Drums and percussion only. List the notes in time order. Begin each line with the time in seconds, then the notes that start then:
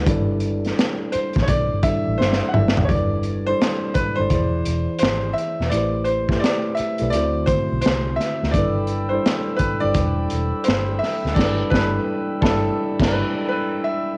0.07 kick, closed hi-hat
0.40 closed hi-hat
0.65 snare, closed hi-hat
0.79 snare, closed hi-hat
1.12 closed hi-hat
1.33 kick, closed hi-hat
1.37 snare
1.47 kick, closed hi-hat
1.83 kick, closed hi-hat
2.21 snare
2.33 snare
2.54 mid tom
2.68 snare
2.77 floor tom
2.89 kick, closed hi-hat
3.23 closed hi-hat
3.61 snare, closed hi-hat
3.95 kick, closed hi-hat
4.30 kick, closed hi-hat
4.66 closed hi-hat
4.99 closed hi-hat
5.03 snare
5.38 closed hi-hat
5.61 snare
5.72 closed hi-hat
6.05 closed hi-hat
6.29 kick, snare
6.44 snare, closed hi-hat
6.77 closed hi-hat
6.98 closed hi-hat
7.13 closed hi-hat
7.47 kick, closed hi-hat
7.82 closed hi-hat
7.86 snare
8.20 snare, closed hi-hat
8.43 snare
8.54 kick, closed hi-hat
8.87 closed hi-hat
9.26 snare, closed hi-hat
9.59 kick, closed hi-hat
9.95 kick, closed hi-hat
10.30 closed hi-hat
10.64 closed hi-hat
10.69 snare
11.03 snare, open hi-hat
11.26 snare
11.36 kick, snare, crash
11.72 kick, snare
12.42 kick, snare
13.00 kick, snare, crash